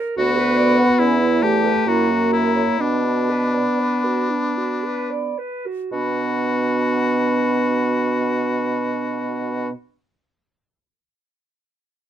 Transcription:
Already playing: A#4
0.17 D2 B3 F#4 B5
0.37 B4
0.57 D5
0.79 F#5
0.99 E2 C#4 E4
1.21 E4
1.42 A3 G4 A5
1.66 B4
1.86 F#2 A#3 E4 F#4 A#5
2.10 F#4
2.33 E4 A#4
2.56 C#5
2.79 B2 B3 D4 B5
3.04 F#4
3.30 B4
3.55 D5
3.80 B4
4.04 F#4
4.31 D4
4.58 F#4
4.84 B4
5.11 D5
5.38 B4
5.66 F#4
5.92 B2 B3 D4 F#4 B5

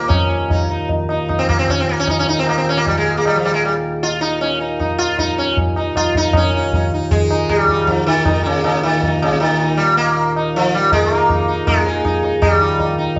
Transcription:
Already playing: A#3
0.01 tabla te
0.08 D#2 A#2 C#4, tabla na, tabla ge
0.50 D#4, tabla tin, tabla ge
0.70 D#4
0.89 tabla tin, tabla ge
1.09 D#4, tabla na
1.28 D#4, tabla na, tabla ge
1.39 C4
1.49 A#3, tabla ge
1.59 C4
1.68 C#4, tabla tin, tabla ge
1.80 C4
1.89 A#3
2.00 C#4
2.07 D#4, tabla na, tabla ge
2.19 C#4
2.27 D#4, tabla te
2.39 C4
2.47 A#3, tabla na
2.58 C4
2.69 C#4
2.77 A#3
2.86 G3, tabla tin, tabla ge
2.97 G#3
3.06 tabla na
3.17 A#3
3.25 G3, tabla na
3.36 F3
3.45 G3
3.54 G#3
3.64 G3, tabla tin
4.03 F4, tabla tin
4.21 D#4, tabla na
4.41 C#4, tabla tin
4.61 D#4
4.80 D#4, tabla na, tabla ge
4.98 F4
5.19 D#4, tabla tin, tabla ge
5.38 C#4
5.57 tabla tin, tabla ge
5.76 D#4, tabla na
5.96 F4, tabla na, tabla ge
6.15 D#4, tabla ge
6.33 D#2 A#2 C#4 D#4, tabla na, tabla ge
6.55 D#4
6.73 D#4, tabla tin, tabla ge
6.94 D#4
7.11 G#3, tabla tin, tabla ge
7.31 D#4, tabla na
7.49 G3, tabla na, tabla ge
7.68 D#4, tabla ge
7.87 F3, tabla tin, tabla ge
8.06 D#3
8.25 D#4, tabla na, tabla ge
8.43 C#3 D#3
8.64 C#3, tabla na
8.83 D#3
9.03 D#4, tabla tin, tabla ge
9.22 C#3, tabla na
9.31 tabla ke
9.40 D#3, tabla na
9.61 D#4
9.77 G3, tabla tin
9.97 A#3, tabla na
10.17 tabla tin
10.36 D#4, tabla na
10.55 F3, tabla tin
10.75 G3
10.92 G#3, tabla na, tabla ge
11.12 D#4
11.16 A#3
11.30 D#4, tabla tin, tabla ge
11.48 D#4
11.67 G#3, tabla na, tabla ge
11.86 D#4, tabla te
12.05 D#4, tabla na, tabla ge
12.23 D#4, tabla te
12.42 D#2 A#2 G3, tabla na, tabla ge
12.60 D#4
12.80 D#4, tabla tin, tabla ge
12.98 D#4
13.16 tabla tin, tabla ge

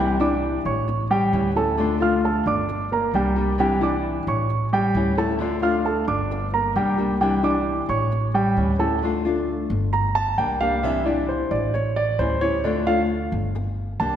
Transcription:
Already playing: C2 C3 E3 G3 G4
0.00 G3 D4 E4 G5
0.20 E3 G3 D4 E4 D5 D6
0.65 A1 C#5 C#6
0.88 muted nylon-string guitar stroke
1.10 G3 G4 G5
1.32 D2 E3 G3 C#4 E4
1.55 G3 A3 C#4 E4 A4 A5
1.78 D3 A3 D4 F4
2.00 A3 D4 F4 F5 F6
2.24 A3 A4 A5
2.46 G1 D4 D5 D6
2.69 muted nylon-string guitar stroke
2.92 A#3 A#4 A#5
3.13 C2 G3 A#3 D4 G4 G5
3.36 G3 A#3 D4 G4
3.58 C3 E3 G3 D4 E4 G4 G5
3.81 E3 G3 D4 E4 D5 D6
4.27 A1 C#5 C#6
4.49 muted nylon-string guitar stroke
4.73 G3 G4 G5
4.94 D2 E3 G3 C#4 E4
5.17 G3 A3 C#4 E4 A4 A5
5.40 D3 A3 D4 F4
5.62 A3 D4 F4 F5 F6
5.85 A3 A4 A5
6.08 G1 D4 D5 D6
6.31 muted nylon-string guitar stroke
6.53 A#3 A#4 A#5
6.76 C2 G3 A#3 D4 G4 G5
6.98 G3 A#3 D4 G4
7.21 C3 E3 G3 D4 E4 G4 G5
7.43 E3 G3 D4 E4 D5 D6
7.89 A1 C#5 C#6
8.12 muted nylon-string guitar stroke
8.34 G3 G4 G5
8.56 D2 E3 G3 C#4 E4
8.79 G3 A3 C#4 E4 A4 A5
9.02 D3 A3 D4 F4
9.25 A3 D4 F4
9.70 G1
9.93 A#5, muted nylon-string guitar stroke
10.15 A5
10.38 C2 G3 A#3 D4 G4 G5
10.60 G3 A#3 D4 G4 F5
10.83 C3 E3 G3 D4 E4 E5
11.05 E3 G3 D4 E4 D5
11.29 C5
11.51 A1 D5
11.74 C#5, muted nylon-string guitar stroke
11.96 D5
12.19 D2 E3 G3 C#4 E4 C5
12.41 G3 C#4 E4 C#5
12.64 D3 A3 D4 F4 D5
12.87 A3 D4 F4 F5
13.32 G1
13.55 muted nylon-string guitar stroke
14.00 C2 G3 A#3 D4 G4 A5

